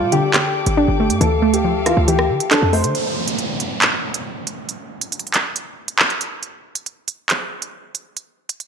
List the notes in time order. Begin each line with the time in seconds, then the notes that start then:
Already playing: D3 G3 A3 F4 A4 D5 G5 D6
0.01 B2
0.12 D3 G4, closed hi-hat
0.34 D3 G4, clap, closed hi-hat
0.66 G1, closed hi-hat
0.77 D4
0.88 G1
1.00 A3
1.10 G2, closed hi-hat
1.21 D2 E3 A4 E5 F5, closed hi-hat
1.42 A3
1.53 G4, closed hi-hat
1.64 F3
1.86 E3 F4, cross-stick, closed hi-hat
1.97 D2
2.08 E3 G4, closed hi-hat
2.19 cross-stick
2.30 D3
2.40 closed hi-hat
2.51 D4 A4, clap, closed hi-hat
2.62 F2
2.73 A3 C5, open hi-hat
2.84 D3, closed hi-hat
2.95 closed hi-hat, downlifter
3.28 closed hi-hat
3.38 closed hi-hat
3.60 closed hi-hat
3.82 clap, closed hi-hat
4.14 closed hi-hat
4.47 closed hi-hat
4.69 closed hi-hat
5.01 closed hi-hat
5.12 closed hi-hat
5.19 closed hi-hat
5.27 closed hi-hat
5.34 clap, closed hi-hat
5.56 closed hi-hat
5.88 closed hi-hat
5.99 clap
6.10 closed hi-hat
6.21 closed hi-hat, open hi-hat
6.43 closed hi-hat
6.75 closed hi-hat
6.86 closed hi-hat
7.08 closed hi-hat
7.30 clap, closed hi-hat
7.62 closed hi-hat
7.95 closed hi-hat
8.17 closed hi-hat
8.49 closed hi-hat
8.60 closed hi-hat